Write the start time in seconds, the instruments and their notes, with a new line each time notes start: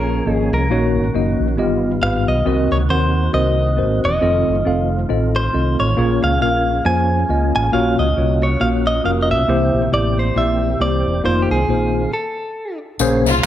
Already playing: fingered electric bass A#1, tonewheel organ F3 A#3 C#4 G#4, tine electric piano A#3 F4 G#4 C#5, clean electric guitar A#4
0.26 fingered electric bass G#1, tine electric piano A#3 F4 G#4 D#5
0.33 clean electric guitar G#4
0.52 fingered electric bass C2, clean electric guitar A#4
0.70 fingered electric bass A#1, tine electric piano A#2 A#3 D#4 F#4 C#5, tonewheel organ D#3 F#4
0.96 fingered electric bass G#1
1.14 fingered electric bass F#1, tine electric piano A#3 D#4 F#4 D#5
1.40 fingered electric bass A#1
1.57 fingered electric bass G1, tine electric piano G2 B3 F4 G4 D#5, tonewheel organ D#3 G3 B3 F4
2.02 fingered electric bass G#1, tine electric piano B3 F4 G4 B4, clean electric guitar F5
2.28 fingered electric bass B1, clean electric guitar D#5
2.46 fingered electric bass C2, tine electric piano C3 C4 F#4 A#4 D#5, tonewheel organ D#3 A#3 C4 F#4
2.72 fingered electric bass C#2, clean electric guitar C#5
2.89 fingered electric bass D#2, tine electric piano C4 F#4 A#4 F#5, clean electric guitar C5
3.33 fingered electric bass C2, tine electric piano C4 F#4 A#4 C5, clean electric guitar D#5
3.77 fingered electric bass G#1, tine electric piano C4 F#4 A#4 C5
4.04 fingered electric bass E1, clean electric guitar D#5
4.21 fingered electric bass F1, tonewheel organ D#3 A3 C4 F4, tine electric piano C4 F4 A4 D#5
4.48 fingered electric bass F#1
4.65 fingered electric bass F1, tine electric piano C4 F4 A4 F5
5.09 fingered electric bass A1, tine electric piano C4 F4 A4 D#5
5.36 clean electric guitar C5
5.53 fingered electric bass C2, tine electric piano C4 F4 A4 D#5
5.80 fingered electric bass A1, clean electric guitar C#5
5.97 fingered electric bass A#1, tine electric piano A#2 A#3 F4 G#4 C#5, tonewheel organ A#3 C#4 F4 G#4
6.24 fingered electric bass C#2, clean electric guitar F5
6.41 fingered electric bass A#1, tine electric piano A#3 F4 G#4 A#4, clean electric guitar F5
6.85 fingered electric bass F2, tine electric piano A#3 F4 G#4 C5, clean electric guitar G#5
7.29 fingered electric bass C#2, tine electric piano A#3 F4 G#4 D#5
7.55 fingered electric bass A1, clean electric guitar G#5
7.73 fingered electric bass A#1, tine electric piano A#2 A#3 F4 F#4 C#5, tonewheel organ F#4, clean electric guitar F5
7.99 fingered electric bass C#2, clean electric guitar D#5
8.17 fingered electric bass C2, tine electric piano A#3 F4 F#4 C#5
8.43 clean electric guitar C#5
8.60 fingered electric bass A#1, tine electric piano A#3 F4 F#4 C#5, clean electric guitar F5
8.87 clean electric guitar D#5
9.04 fingered electric bass F1, tine electric piano A#3 F4 F#4 A#4, clean electric guitar F5
9.23 clean electric guitar D#5
9.31 fingered electric bass B1, clean electric guitar E5
9.48 fingered electric bass C2, tine electric piano C3 A#3 E4 G4 C5, tonewheel organ E3 C4 G4
9.74 fingered electric bass A#1
9.92 fingered electric bass A1, tine electric piano A#3 E4 G4 D5, clean electric guitar D5
10.19 clean electric guitar C5
10.36 fingered electric bass A#1, tine electric piano A#3 E4 G4 D5, clean electric guitar E5
10.80 fingered electric bass C2, tine electric piano A#3 E4 G4 C5, clean electric guitar D5
11.06 fingered electric bass E1
11.24 fingered electric bass F1, tonewheel organ D#3 A#3 F4, tine electric piano A#3 D#4 F4 C5, clean electric guitar C5
11.42 clean electric guitar G4
11.51 fingered electric bass C2, clean electric guitar G#4
11.68 fingered electric bass A#1, tine electric piano A#3 D#4 F4 C5
12.13 clean electric guitar A4
12.99 fingered electric bass A#1, tine electric piano A#2 A#3 C#4 G#4 C5, tonewheel organ C#3 A#3 G#4 C5, tambourine
13.26 fingered electric bass C2, string section G#3 C#4 F4, tambourine